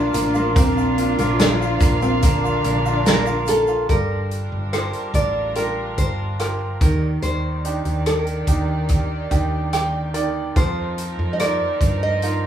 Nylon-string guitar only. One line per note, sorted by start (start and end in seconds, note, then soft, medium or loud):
0.00 0.37 D4 loud
0.36 0.55 A#3 medium
0.56 1.15 C4 loud
1.19 1.38 A#3 medium
1.40 2.02 D4 medium
2.02 2.23 C4 medium
2.23 3.44 A#3 medium
3.07 3.48 A#4 medium
3.49 3.89 A4 medium
3.90 4.73 A#4 medium
4.73 5.14 C5 medium
5.15 5.53 D5 medium
5.56 5.95 A#4 medium
5.98 6.81 C5 medium
6.81 7.22 A#4 medium
7.22 8.06 C5 medium
8.06 9.69 A#4 medium
10.57 11.33 C5 medium
11.33 11.40 D#5 medium
11.40 12.02 D5 medium
12.03 12.47 D#5 medium